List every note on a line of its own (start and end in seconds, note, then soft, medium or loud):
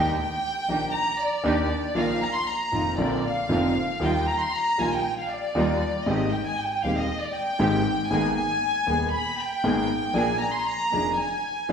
0.00 0.14 D#2 medium
0.00 0.14 D#3 medium
0.00 0.14 A#3 medium
0.00 0.14 D4 medium
0.00 0.14 D4 soft
0.00 0.14 D#4 medium
0.00 0.14 G4 medium
0.00 0.17 G5 medium
0.20 0.91 G5 medium
0.68 0.90 A#1 soft
0.68 0.90 A#2 soft
0.68 0.90 D#3 soft
0.68 0.90 A#3 soft
0.68 0.90 D4 medium
0.68 0.90 D4 soft
0.68 0.90 D#4 soft
0.68 0.90 G4 medium
0.68 0.90 G4 soft
0.96 1.20 A#5 medium
1.20 1.96 D5 medium
1.44 1.66 D#2 medium
1.44 1.66 D#3 medium
1.44 1.66 A#3 medium
1.44 1.66 D4 medium
1.44 1.66 D#4 medium
1.44 1.66 G4 medium
1.95 2.17 A#1 medium
1.95 2.17 A#2 medium
1.95 2.17 D#3 medium
1.95 2.17 F3 medium
1.95 2.17 A#3 medium
1.95 2.17 D#4 medium
1.95 2.17 F4 medium
1.95 2.22 F5 medium
2.23 2.35 A#5 medium
2.35 2.47 C6 medium
2.49 2.99 A#5 medium
2.72 2.94 F1 soft
2.72 2.94 F2 soft
2.72 2.94 D#3 soft
2.72 2.94 F3 soft
2.72 2.94 A#3 soft
2.72 2.94 D#4 soft
2.72 2.94 F4 soft
2.98 3.20 A#1 medium
2.98 3.20 A#2 medium
2.98 3.20 D3 medium
2.98 3.20 A#3 medium
2.98 3.20 C4 medium
2.98 3.21 D4 medium
2.98 3.20 F4 medium
2.98 3.23 D5 medium
3.26 4.03 F5 medium
3.49 3.71 F1 medium
3.49 3.72 F2 medium
3.49 3.71 D3 medium
3.49 3.71 A#3 medium
3.49 3.72 A#3 medium
3.49 3.71 C4 medium
3.49 3.72 C4 medium
3.49 3.72 D4 medium
3.49 3.72 F4 medium
4.00 4.23 D#2 medium
4.00 4.23 D#3 medium
4.00 4.23 G3 soft
4.00 4.24 G3 medium
4.00 4.23 A#3 soft
4.00 4.24 D#4 medium
4.00 4.23 F4 medium
4.00 4.24 F4 medium
4.00 4.28 G5 medium
4.29 4.41 A#5 medium
4.42 4.54 C6 medium
4.54 4.79 A#5 medium
4.78 5.01 A#1 soft
4.78 5.00 A#2 soft
4.78 5.00 D#3 soft
4.78 5.00 G3 soft
4.78 5.01 G3 soft
4.78 5.00 A#3 soft
4.78 5.01 D#4 soft
4.78 5.01 F4 soft
4.78 5.01 F4 medium
4.78 4.93 G#5 medium
4.93 5.19 G5 medium
5.19 5.30 F5 medium
5.31 6.08 D5 medium
5.55 5.78 D#2 medium
5.55 5.77 D#3 medium
5.55 5.78 G3 medium
5.55 5.77 A#3 medium
5.55 5.78 D#4 medium
5.55 5.78 F4 medium
6.06 6.29 G#1 medium
6.06 6.28 G#2 medium
6.06 6.29 D#3 medium
6.06 6.29 G#3 medium
6.06 6.29 C4 medium
6.06 6.29 G4 medium
6.06 6.33 D#5 medium
6.33 6.46 G5 medium
6.47 6.58 G#5 medium
6.60 6.85 G5 medium
6.83 7.05 D#1 soft
6.83 7.05 D#2 soft
6.83 7.05 D#3 soft
6.83 7.06 G#3 soft
6.83 7.06 C4 soft
6.83 7.06 G4 soft
6.83 7.06 G4 medium
6.83 6.97 F5 medium
6.97 7.22 D#5 medium
7.23 7.35 D5 medium
7.35 8.11 G5 medium
7.59 7.81 G#1 medium
7.59 7.82 G#2 medium
7.59 7.81 D#3 medium
7.59 7.82 G#3 medium
7.59 7.82 C4 medium
7.59 7.82 G4 medium
8.10 8.32 G#1 medium
8.10 8.32 G#2 medium
8.10 8.32 D#3 medium
8.10 8.32 A#3 medium
8.10 8.33 A#3 medium
8.10 8.33 B3 soft
8.10 8.33 B3 medium
8.10 8.33 G#4 medium
8.10 8.35 G#5 medium
8.36 9.08 G#5 medium
8.87 9.08 D#1 soft
8.87 9.09 D#2 soft
8.87 9.08 D#3 soft
8.87 9.08 A#3 soft
8.87 9.09 A#3 medium
8.87 9.08 B3 soft
8.87 9.09 B3 soft
8.87 9.09 G#4 soft
8.87 9.09 G#4 medium
9.13 9.38 B5 medium
9.39 10.15 G5 medium
9.64 9.85 G#1 medium
9.64 9.85 G#2 medium
9.64 9.85 D#3 medium
9.64 9.85 A#3 medium
9.64 9.85 B3 medium
9.64 9.85 G#4 medium
9.64 9.86 G#4 medium
10.14 10.36 A#1 medium
10.14 10.36 A#2 medium
10.14 10.36 F3 medium
10.14 10.36 A#3 medium
10.14 10.36 D4 medium
10.14 10.37 D4 medium
10.14 10.36 G#4 medium
10.14 10.37 G#4 medium
10.14 10.41 G#5 medium
10.40 10.53 A#5 medium
10.53 10.66 C6 medium
10.64 11.16 A#5 medium
10.91 11.14 F1 soft
10.91 11.14 F2 soft
10.91 11.14 F3 soft
10.91 11.13 A#3 soft
10.91 11.14 A#3 soft
10.91 11.13 D4 soft
10.91 11.14 D4 soft
10.91 11.13 G#4 medium
10.91 11.14 G#4 soft
11.17 11.72 G#5 medium
11.69 11.72 A#1 medium
11.69 11.72 A#2 medium
11.69 11.72 F3 medium
11.69 11.72 A#3 medium
11.69 11.72 D4 medium